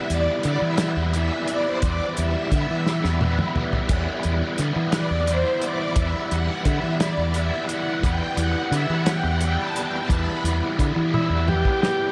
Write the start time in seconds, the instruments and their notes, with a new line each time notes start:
Already playing: overdriven electric guitar E3 G3 B3 E4
0.10 fingered electric bass E2, string machine D5, closed hi-hat
0.43 fingered electric bass D3, overdriven electric guitar E3 G3, string machine D5, closed hi-hat
0.49 overdriven electric guitar B3 E4
0.62 fingered electric bass E3, string machine E5
0.78 overdriven electric guitar B3 E4, snare, closed hi-hat
0.82 overdriven electric guitar E3 G3
0.96 fingered electric bass E2
1.14 overdriven electric guitar E3 G3, string machine E5, closed hi-hat
1.18 overdriven electric guitar B3 E4
1.48 string machine D5, closed hi-hat
1.66 string machine C5
1.82 fingered electric bass E2, overdriven electric guitar E3 G3, string machine D5, kick, closed hi-hat
1.87 overdriven electric guitar B3 E4
2.16 fingered electric bass E2, string machine E5, closed hi-hat
2.52 fingered electric bass D3, overdriven electric guitar E3 G3 B3, kick, closed hi-hat
2.56 overdriven electric guitar E4
2.70 fingered electric bass E3
2.86 overdriven electric guitar E3 G3 B3 E4, snare
3.04 fingered electric bass E2, snare
3.21 overdriven electric guitar E3 G3 B3 E4, high tom
3.39 mid tom
3.56 mid tom
3.73 floor tom
3.89 fingered electric bass E2, overdriven electric guitar E3 G3 B3, kick, closed hi-hat, crash
3.93 overdriven electric guitar E4
4.23 fingered electric bass E2, closed hi-hat
4.58 fingered electric bass D3, overdriven electric guitar E3 G3 B3, closed hi-hat
4.62 overdriven electric guitar E4
4.76 fingered electric bass E3
4.92 overdriven electric guitar G3 B3 E4, string machine D5, snare, closed hi-hat
4.96 overdriven electric guitar E3
5.11 fingered electric bass E2
5.27 overdriven electric guitar E3 G3 B3 E4, string machine C5, closed hi-hat
5.62 string machine D5, closed hi-hat
5.96 fingered electric bass E2, overdriven electric guitar E3 G3 B3, string machine E5, kick, closed hi-hat
6.01 overdriven electric guitar E4
6.30 fingered electric bass E2, string machine F#5, closed hi-hat
6.63 fingered electric bass D3, overdriven electric guitar E3, string machine E5, kick, closed hi-hat
6.67 overdriven electric guitar G3 B3 E4
6.83 fingered electric bass E3
6.99 overdriven electric guitar G3 B3 E4, string machine D5, snare, closed hi-hat
7.03 overdriven electric guitar E3
7.18 fingered electric bass E2
7.34 overdriven electric guitar E3 G3 B3 E4, string machine E5, closed hi-hat
7.69 string machine F#5, closed hi-hat
8.03 fingered electric bass E2, overdriven electric guitar E3 G3 B3 E4, string machine G5, kick, closed hi-hat
8.37 fingered electric bass E2, string machine F#5, closed hi-hat
8.71 fingered electric bass D3, overdriven electric guitar E3 G3 B3, string machine E5, closed hi-hat
8.76 overdriven electric guitar E4
8.90 fingered electric bass E3, string machine F#5
9.06 overdriven electric guitar G3 B3 E4, snare, closed hi-hat
9.10 overdriven electric guitar E3, string machine G5
9.24 fingered electric bass E2, string machine F#5
9.41 overdriven electric guitar E3 G3 B3, string machine G5, closed hi-hat
9.45 overdriven electric guitar E4
9.63 string machine A5
9.76 closed hi-hat
9.84 string machine G5
10.02 string machine A5
10.09 fingered electric bass E2, overdriven electric guitar E3 G3 B3, kick, closed hi-hat
10.14 overdriven electric guitar E4
10.19 string machine B5
10.44 fingered electric bass E2, closed hi-hat
10.78 fingered electric bass D3, overdriven electric guitar E3 G3 B3 E4, kick, closed hi-hat
10.96 fingered electric bass E3
11.12 overdriven electric guitar E3 G3 B3 E4, transistor combo organ E4, high tom
11.30 fingered electric bass E2
11.47 overdriven electric guitar E3 G3 B3 E4, transistor combo organ G4, mid tom
11.65 kick
11.82 transistor combo organ G4, snare